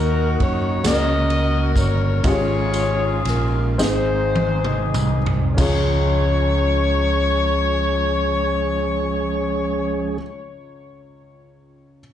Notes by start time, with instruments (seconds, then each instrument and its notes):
Already playing: fingered electric bass D#2, upright piano D#3 D#4 F#4 A#4, tonewheel organ A#3 D#4 F#4, saxophone section D#4 F#4 A#4
0.40 fingered electric bass F#2, saxophone section C#5, kick, ride
0.83 fingered electric bass C#2, upright piano C#3 C#4 F#4 G#4, tonewheel organ A#3 C#4 F#4, saxophone section F#4 A#4 D#5, snare, ride, tambourine
0.91 upright piano A#4
1.30 ride
1.76 fingered electric bass G1, saxophone section C#5, kick, ride, tambourine
2.23 fingered electric bass G#1, upright piano G#2 C#4 F4 G4, tonewheel organ G#3 C#4 E4, saxophone section F4 G#4, kick, ride, tambourine
2.27 tonewheel organ F4, saxophone section C#5
2.32 upright piano G#4
2.74 ride, tambourine
3.25 fingered electric bass A#1, saxophone section A#4, snare, ride
3.78 fingered electric bass G#1, upright piano G#2 C4 D#4 G#4, tonewheel organ G#3 C4 D#4, saxophone section D#4 G#4 C5, snare, tambourine
4.36 high tom
4.65 mid tom
4.94 fingered electric bass C2, mid tom, tambourine
5.26 floor tom
5.54 upright piano C#2 C#4 F4, tonewheel organ F3 G#3 C#4 G#4, kick, crash, tambourine
5.58 fingered electric bass C#2, upright piano G#4, saxophone section C#5